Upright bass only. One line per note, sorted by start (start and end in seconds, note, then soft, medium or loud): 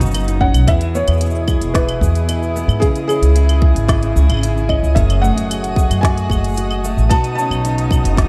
0.00 0.50 F#1 loud
0.53 0.64 B1 medium
0.67 1.03 E2 loud
1.08 1.57 E2 medium
1.61 1.97 E1 medium
2.01 2.64 E2 medium
2.68 2.79 G#2 loud
3.22 3.71 C#2 medium
3.75 4.11 G#1 medium
4.16 4.26 C#2 loud
4.29 4.79 G#1 loud
4.83 4.93 C#2 medium
4.96 5.32 F#1 loud
5.36 5.86 F#1 medium
5.90 6.26 F#2 medium
6.29 6.92 F#1 medium
6.97 7.08 A1 medium
7.51 8.00 B1 medium
8.04 8.29 F#1 medium